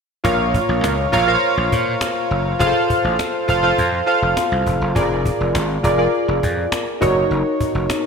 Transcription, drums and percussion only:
0.25 cajon bass loud
0.54 cajon bass medium
0.84 cajon slap loud
1.13 cajon bass medium
1.43 cajon slap soft
1.72 cajon bass medium
2.01 cajon slap loud
2.60 cajon bass loud
2.90 cajon bass medium
3.19 cajon slap loud
3.49 cajon bass medium
3.78 cajon bass medium
4.08 cajon slap soft
4.37 cajon slap loud
4.66 cajon bass medium
4.96 cajon bass loud
5.25 cajon bass medium
5.55 cajon slap loud
5.84 cajon bass medium
6.14 cajon slap soft
6.43 cajon bass medium
6.72 cajon slap loud
7.02 cajon bass loud
7.31 cajon slap soft
7.61 cajon bass medium
7.90 cajon slap loud

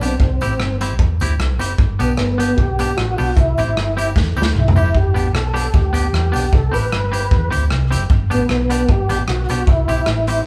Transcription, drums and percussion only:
0.01 closed hi-hat medium
0.01 tambourine medium
0.20 kick loud
0.41 closed hi-hat medium
0.41 tambourine medium
0.60 cross-stick loud
0.81 closed hi-hat medium
0.81 tambourine medium
0.99 kick loud
1.20 closed hi-hat loud
1.20 tambourine medium
1.40 cross-stick loud
1.59 closed hi-hat loud
1.59 tambourine medium
1.78 kick loud
2.00 closed hi-hat medium
2.00 tambourine medium
2.17 cross-stick loud
2.40 closed hi-hat loud
2.40 tambourine medium
2.58 kick loud
2.79 closed hi-hat medium
2.79 tambourine medium
2.98 cross-stick loud
3.18 open hi-hat medium
3.18 tambourine medium
3.36 kick loud
3.36 hi-hat pedal medium
3.58 closed hi-hat medium
3.58 tambourine medium
3.77 cross-stick loud
3.98 closed hi-hat medium
3.98 tambourine medium
4.16 kick loud
4.16 snare medium
4.36 tambourine medium
4.42 snare medium
4.55 mid tom medium
4.68 floor tom loud
4.76 tambourine medium
4.95 kick medium
5.16 closed hi-hat medium
5.16 tambourine medium
5.35 cross-stick loud
5.56 closed hi-hat loud
5.56 tambourine medium
5.74 kick loud
5.94 closed hi-hat loud
5.94 tambourine medium
6.14 cross-stick loud
6.34 closed hi-hat loud
6.34 tambourine medium
6.53 kick loud
6.74 closed hi-hat medium
6.74 tambourine medium
6.92 cross-stick loud
7.13 closed hi-hat loud
7.13 tambourine medium
7.31 kick loud
7.52 closed hi-hat loud
7.52 tambourine medium
7.70 cross-stick loud
7.92 closed hi-hat loud
7.92 tambourine medium
8.10 kick loud
8.31 closed hi-hat medium
8.31 tambourine medium
8.49 cross-stick loud
8.70 closed hi-hat loud
8.70 tambourine medium
8.89 kick loud
9.09 closed hi-hat loud
9.09 tambourine medium
9.28 cross-stick loud
9.49 closed hi-hat loud
9.49 tambourine medium
9.67 kick loud
9.89 closed hi-hat medium
9.89 tambourine medium
10.06 cross-stick loud
10.27 closed hi-hat loud
10.27 tambourine medium

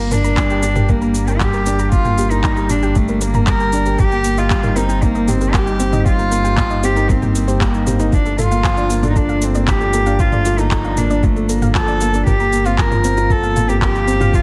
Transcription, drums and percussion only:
0.11 mid tom medium
0.11 shaker medium
0.24 shaker soft
0.37 kick loud
0.37 clap medium
0.37 shaker soft
0.50 shaker soft
0.63 shaker medium
0.76 mid tom medium
0.76 shaker soft
0.89 kick loud
0.89 shaker soft
1.02 shaker soft
1.14 shaker medium
1.27 shaker soft
1.40 kick medium
1.40 clap medium
1.40 mid tom medium
1.40 shaker soft
1.53 shaker soft
1.66 shaker medium
1.79 shaker soft
1.92 kick loud
1.92 shaker soft
2.05 mid tom medium
2.05 shaker soft
2.18 shaker medium
2.31 shaker soft
2.44 kick loud
2.44 clap loud
2.44 shaker soft
2.57 shaker soft
2.69 mid tom medium
2.69 shaker medium
2.83 shaker soft
2.95 kick loud
2.95 shaker soft
3.08 shaker soft
3.21 shaker medium
3.34 mid tom medium
3.34 shaker soft
3.47 kick loud
3.47 clap loud
3.47 shaker soft
3.60 shaker soft
3.72 shaker medium
3.86 shaker soft
3.99 kick loud
3.99 mid tom medium
3.99 shaker soft
4.12 shaker soft
4.24 shaker medium
4.38 shaker soft
4.50 kick loud
4.50 clap medium
4.50 shaker soft
4.63 mid tom medium
4.63 shaker soft
4.76 shaker medium
4.89 shaker soft
5.02 kick loud
5.02 shaker soft
5.15 shaker soft
5.28 mid tom medium
5.28 shaker medium
5.41 shaker soft
5.54 kick loud
5.54 clap medium
5.54 shaker soft
5.67 shaker soft
5.80 shaker medium
5.93 mid tom medium
5.93 shaker soft
6.06 kick loud
6.06 shaker soft
6.19 shaker soft
6.32 shaker medium
6.45 shaker soft
6.57 kick loud
6.57 clap medium
6.57 mid tom medium
6.57 shaker soft
6.70 shaker soft
6.83 shaker medium
6.96 shaker soft
7.09 kick loud
7.09 shaker soft
7.22 mid tom medium
7.22 shaker soft
7.35 shaker medium
7.48 shaker soft
7.61 kick medium
7.61 clap medium
7.61 shaker soft
7.74 shaker soft
7.87 mid tom medium
7.87 shaker medium
7.99 shaker soft
8.12 kick loud
8.12 shaker soft
8.26 shaker soft
8.38 mid tom medium
8.38 shaker medium
8.52 shaker soft
8.64 kick loud
8.64 clap medium
8.64 shaker soft
8.77 shaker soft
8.90 shaker medium
9.03 mid tom medium
9.03 shaker soft
9.16 kick loud
9.16 shaker soft
9.29 shaker soft
9.42 shaker medium
9.55 shaker soft
9.68 kick loud
9.68 clap medium
9.68 mid tom medium
9.68 shaker soft
9.81 shaker soft
9.93 shaker medium
10.06 shaker soft
10.19 kick loud
10.19 shaker soft
10.32 mid tom medium
10.32 shaker soft
10.45 shaker medium
10.58 shaker soft
10.71 kick loud
10.71 clap medium
10.71 shaker soft
10.84 shaker soft
10.97 mid tom medium
10.97 shaker medium
11.10 shaker soft
11.23 kick loud
11.23 shaker soft
11.36 shaker soft
11.49 shaker medium
11.62 mid tom medium
11.62 shaker soft
11.75 kick medium
11.75 clap medium
11.75 shaker soft
11.88 shaker soft
12.01 shaker medium
12.14 shaker soft
12.27 kick medium
12.27 mid tom medium
12.27 shaker soft
12.40 shaker soft
12.53 shaker medium
12.65 shaker soft
12.78 kick loud
12.78 clap medium
12.78 shaker soft
12.91 mid tom medium
12.91 shaker soft
13.04 shaker medium
13.17 shaker soft
13.30 kick medium
13.30 shaker soft
13.43 shaker soft
13.56 mid tom medium
13.56 shaker medium
13.69 shaker soft
13.82 kick loud
13.82 clap medium
13.82 shaker soft
13.95 shaker soft
14.08 shaker medium
14.21 mid tom medium
14.21 shaker soft
14.33 kick loud
14.33 shaker soft

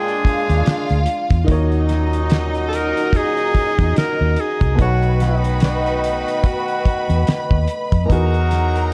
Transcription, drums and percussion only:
0.08 closed hi-hat soft
0.25 kick medium
0.25 closed hi-hat medium
0.49 closed hi-hat medium
0.66 snare loud
0.66 closed hi-hat medium
0.89 closed hi-hat soft
1.06 closed hi-hat medium
1.30 kick loud
1.30 closed hi-hat medium
1.48 kick loud
1.48 closed hi-hat medium
1.72 closed hi-hat soft
1.89 snare soft
1.89 closed hi-hat medium
2.13 closed hi-hat medium
2.30 snare loud
2.30 closed hi-hat medium
2.55 closed hi-hat soft
2.73 closed hi-hat medium
2.97 closed hi-hat medium
3.13 kick medium
3.13 closed hi-hat medium
3.37 closed hi-hat soft
3.55 kick medium
3.55 closed hi-hat medium
3.79 kick loud
3.79 closed hi-hat medium
3.96 snare loud
3.96 closed hi-hat loud
4.36 closed hi-hat medium
4.61 kick medium
4.61 closed hi-hat medium
4.79 kick loud
4.79 closed hi-hat medium
5.02 closed hi-hat soft
5.20 snare soft
5.20 closed hi-hat medium
5.44 closed hi-hat medium
5.60 snare loud
5.60 closed hi-hat medium
5.86 closed hi-hat soft
6.04 closed hi-hat medium
6.28 closed hi-hat medium
6.44 kick loud
6.44 closed hi-hat medium
6.68 closed hi-hat soft
6.85 kick medium
6.85 closed hi-hat medium
7.10 closed hi-hat medium
7.27 snare loud
7.27 closed hi-hat loud
7.51 kick loud
7.68 closed hi-hat medium
7.92 kick loud
7.92 closed hi-hat medium
8.10 kick loud
8.10 closed hi-hat medium
8.34 closed hi-hat soft
8.51 snare soft
8.51 closed hi-hat medium
8.76 closed hi-hat medium

